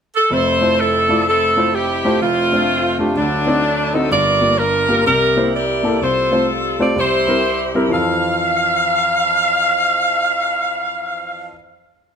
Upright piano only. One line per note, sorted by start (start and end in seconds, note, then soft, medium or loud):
0.30 2.17 F1 medium
0.30 2.17 F2 medium
0.61 0.73 A3 medium
0.61 0.74 E4 soft
0.61 0.74 F4 soft
0.61 0.74 C5 medium
1.09 1.21 A3 medium
1.09 1.21 E4 medium
1.09 1.22 F4 medium
1.09 1.22 D5 medium
1.57 1.69 A3 medium
1.57 1.69 E4 medium
1.57 1.69 F4 medium
1.57 1.69 C5 medium
2.05 2.17 A3 medium
2.05 2.17 E4 medium
2.05 2.17 F4 medium
2.05 2.17 C5 medium
2.21 3.12 F1 medium
2.21 3.12 F2 medium
2.52 2.64 A3 medium
2.52 2.64 D4 medium
2.52 2.64 F4 medium
2.52 2.65 C5 medium
2.99 3.11 A3 medium
2.99 3.12 D4 medium
2.99 3.12 F4 medium
2.99 3.12 G4 medium
3.16 4.07 D2 medium
3.16 4.07 D3 medium
3.46 3.59 C4 medium
3.46 3.59 D#4 medium
3.46 3.59 F#4 medium
3.46 3.59 D5 medium
3.94 4.06 C4 medium
3.94 4.07 D#4 medium
3.94 4.07 F#4 medium
3.94 4.07 D#5 medium
4.11 5.02 G1 medium
4.11 5.02 G2 medium
4.41 4.54 A#3 medium
4.41 4.54 F4 soft
4.41 4.54 G4 medium
4.41 4.54 D5 medium
4.88 5.01 A#3 medium
4.88 5.01 F4 medium
4.88 5.01 G4 medium
4.88 5.01 A#4 medium
5.06 5.98 C2 medium
5.06 5.98 C3 medium
5.37 5.49 A#3 medium
5.37 5.49 E4 medium
5.37 5.49 G4 medium
5.37 5.49 C5 medium
5.83 5.96 A#3 medium
5.83 5.96 E4 medium
5.83 5.96 G4 medium
5.83 5.97 A4 medium
6.01 6.93 C2 medium
6.01 6.93 C3 medium
6.31 6.44 A3 medium
6.31 6.44 C4 medium
6.31 6.44 F4 medium
6.31 6.45 C5 medium
6.79 6.92 A3 medium
6.79 6.92 C4 medium
6.79 6.92 F4 medium
6.79 6.92 C5 medium
6.95 7.88 C2 medium
6.95 7.88 C3 medium
7.27 7.39 G3 medium
7.27 7.40 C4 medium
7.27 7.40 E4 medium
7.27 7.40 A#4 medium
7.75 7.87 G3 medium
7.75 7.87 C4 medium
7.75 7.87 E4 medium
7.75 7.87 A#4 medium
7.89 11.50 F2 medium
7.89 11.51 E3 medium
7.89 11.48 F3 medium
7.89 11.49 C4 medium
7.94 11.53 A4 medium